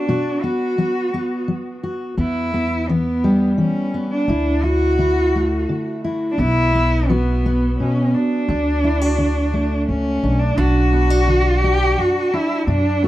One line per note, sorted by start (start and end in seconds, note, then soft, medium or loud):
0.00 0.43 B3 medium
0.00 0.44 D4 medium
0.08 0.71 B2 medium
0.08 1.82 F#4 medium
0.43 0.78 B3 medium
0.43 1.48 F#4 medium
0.78 1.41 F#3 medium
0.78 1.14 B3 medium
1.14 2.14 B3 medium
1.48 2.11 F#3 medium
1.83 2.14 F#4 medium
2.17 2.81 E2 medium
2.17 3.54 E2 medium
2.17 2.53 B3 medium
2.17 2.90 E4 medium
2.54 2.88 B3 medium
2.89 3.52 E3 medium
2.89 3.58 B3 medium
2.89 3.93 B3 medium
3.24 4.29 G3 medium
3.58 4.21 E3 medium
3.58 4.07 C#4 medium
3.94 4.29 B3 soft
4.11 4.64 D4 medium
4.28 5.64 D2 medium
4.28 4.91 D2 medium
4.28 4.62 E4 medium
4.62 4.98 E4 medium
4.62 5.68 F#4 medium
4.98 5.61 D3 medium
4.98 6.03 E4 medium
5.35 6.35 A3 medium
5.69 6.32 D3 medium
6.04 6.35 E4 medium
6.31 6.40 D4 medium
6.38 7.74 B1 medium
6.38 7.01 B2 medium
6.38 6.74 B3 medium
6.38 7.10 E4 loud
6.75 7.44 B3 medium
7.09 7.72 F#3 medium
7.09 7.79 B3 medium
7.09 8.84 F#4 medium
7.46 8.45 B3 medium
7.79 8.14 B2 medium
7.79 8.16 C#4 medium
8.14 9.87 D4 medium
8.48 9.84 D2 medium
8.48 9.12 D2 medium
8.48 9.19 D4 medium
8.84 9.01 E4 medium
9.01 10.58 F#4 medium
9.18 9.81 D3 medium
9.54 10.54 A3 medium
9.88 10.20 C#2 medium
9.88 10.41 C#4 medium
10.23 10.55 B1 medium
10.23 10.54 D4 medium
10.39 10.60 D4 medium
10.57 11.93 B1 medium
10.57 11.21 B2 medium
10.57 13.08 D4 medium
10.57 11.66 F#4 loud
10.93 11.10 B3 medium
11.10 11.63 D4 soft
11.28 11.90 D3 medium
11.64 12.32 D4 medium
11.64 11.99 G4 loud
11.98 12.60 F#2 medium
11.98 12.35 F#4 medium
12.33 12.64 D4 medium
12.33 12.68 E4 medium
12.67 13.08 F#2 medium
12.67 13.08 B2 medium
12.67 13.05 D4 medium
13.03 13.08 A3 medium
13.03 13.08 F#4 medium